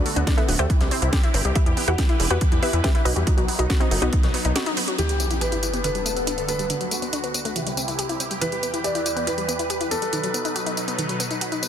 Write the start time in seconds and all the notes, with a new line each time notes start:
Already playing: D3 A3 B3 F#4
0.06 A3, open hi-hat
0.16 D2 B3 D4, closed hi-hat
0.27 D4, kick, snare, closed hi-hat
0.37 B3 E4 A4 B4 E5, closed hi-hat
0.48 D1 B3 D4, open hi-hat
0.59 D2 A3 G4 C5 E5 G5, closed hi-hat
0.70 C3 E3 C4 E4 G4, kick, closed hi-hat
0.81 C2 G3, snare, closed hi-hat
0.91 C4, open hi-hat
1.02 C2 E4, closed hi-hat
1.13 G4, kick, snare, closed hi-hat
1.24 E4, closed hi-hat
1.34 G1 C4, open hi-hat
1.45 C2 G3, closed hi-hat
1.55 E3 E4 G4 B4 E5, kick, closed hi-hat
1.66 E2 G3 E4, closed hi-hat
1.77 B3 E4, open hi-hat
1.88 E2 E4 F#4 G4 B4 F#5, closed hi-hat
1.98 E4 G4, kick, snare, closed hi-hat
2.09 E4, closed hi-hat
2.20 E1 E4, open hi-hat
2.30 E2 B3 F#4 G4 B4 F#5, closed hi-hat
2.41 E3 E4, kick, closed hi-hat
2.52 E2 G3 E4, closed hi-hat
2.62 B3 E4 G4 B4 E5, open hi-hat
2.73 E2 E4, closed hi-hat
2.84 G4 B4 E5 G5, kick, snare, closed hi-hat
2.95 E4, closed hi-hat
3.05 B1 B3 D#4 F#4 B4 D#5, open hi-hat
3.16 E2 G3 F#4, closed hi-hat
3.27 D#3 F#3 B3 D#4 F#4, kick, closed hi-hat
3.37 B1 F#3 F#4, closed hi-hat
3.48 B3, open hi-hat
3.59 B1 D#4 F#4, closed hi-hat
3.70 F#4, kick, snare, closed hi-hat
3.80 C4 D#4 F#4 C5, closed hi-hat
3.91 F#1 D#4 F#4, open hi-hat
4.02 B1 B3 D#4 F#4 B4, closed hi-hat
4.13 D#3, kick, closed hi-hat
4.23 B1 F#3, snare, closed hi-hat
4.34 B3, open hi-hat
4.45 B1 D#4, closed hi-hat
4.56 F#4, snare, closed hi-hat
4.66 D#4, closed hi-hat
4.77 B3, open hi-hat
4.88 F#3, closed hi-hat
4.98 E2 E3 B3 G4, closed hi-hat, tambourine, sub drop
5.09 G3, closed hi-hat, tambourine
5.20 B3, closed hi-hat, tambourine
5.31 E4, closed hi-hat, tambourine
5.41 G4 B4, closed hi-hat, tambourine
5.52 E4, closed hi-hat, tambourine
5.63 E4, closed hi-hat, tambourine
5.73 B3, closed hi-hat, tambourine
5.84 G2 D3 A4 B4, closed hi-hat, tambourine
5.95 G3, closed hi-hat, tambourine
6.06 A3, closed hi-hat, tambourine
6.16 B3, closed hi-hat, tambourine
6.27 D4, closed hi-hat, tambourine
6.38 B3, closed hi-hat, tambourine
6.48 A3 B4, closed hi-hat, tambourine
6.59 G3, closed hi-hat, tambourine
6.70 D2 D3 F#4, closed hi-hat, tambourine
6.81 F#3, closed hi-hat, tambourine
6.91 A3, closed hi-hat, tambourine
7.02 B3, closed hi-hat, tambourine
7.13 D4, closed hi-hat, tambourine
7.24 B3, closed hi-hat, tambourine
7.34 B3, closed hi-hat, tambourine
7.45 A3, closed hi-hat, tambourine
7.56 C2 C3 E3 E4 G4, closed hi-hat, tambourine
7.67 G3, closed hi-hat, tambourine
7.77 C4, closed hi-hat, tambourine
7.88 E4, closed hi-hat, tambourine
7.99 G4, closed hi-hat, tambourine
8.09 E4, closed hi-hat, tambourine
8.20 C4, closed hi-hat, tambourine
8.31 G3, closed hi-hat, tambourine
8.41 E2 E3 B4, closed hi-hat, tambourine
8.52 G3, closed hi-hat, tambourine
8.63 B3, closed hi-hat, tambourine
8.74 E4, closed hi-hat, tambourine
8.84 G4 D5, closed hi-hat, tambourine
8.95 E4, closed hi-hat, tambourine
9.06 E4, closed hi-hat, tambourine
9.16 B3, closed hi-hat, tambourine
9.27 E3 B4, closed hi-hat, tambourine
9.38 G3, closed hi-hat, tambourine
9.48 B3, closed hi-hat, tambourine
9.59 E4, closed hi-hat, tambourine
9.70 G4, closed hi-hat, tambourine
9.81 E4, closed hi-hat, tambourine
9.91 B3 A4, closed hi-hat, tambourine
10.02 G3, closed hi-hat, tambourine
10.13 B2 D#3 F#3 D#4, closed hi-hat, tambourine
10.23 F#3, closed hi-hat, tambourine
10.34 B3, closed hi-hat, tambourine
10.45 D#4, closed hi-hat, tambourine
10.56 F#4, closed hi-hat, tambourine
10.66 D#4, closed hi-hat, tambourine
10.77 D#4, closed hi-hat, tambourine
10.88 B3, closed hi-hat, tambourine
10.99 D#3, closed hi-hat, tambourine
11.09 F#3, closed hi-hat, tambourine
11.20 B3, closed hi-hat, tambourine
11.31 D#4, closed hi-hat, tambourine
11.41 F#4, closed hi-hat, tambourine
11.52 D#4, closed hi-hat, tambourine
11.63 B3, closed hi-hat, tambourine